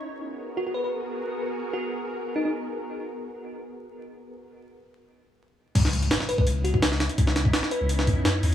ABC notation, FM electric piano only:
X:1
M:4/4
L:1/16
Q:1/4=168
K:C#m
V:1 name="FM electric piano"
z6 F F B B z6 | z3 F4 z3 D D z4 | z16 | z16 |
z6 B B z2 F F z4 | z6 B4 z6 |]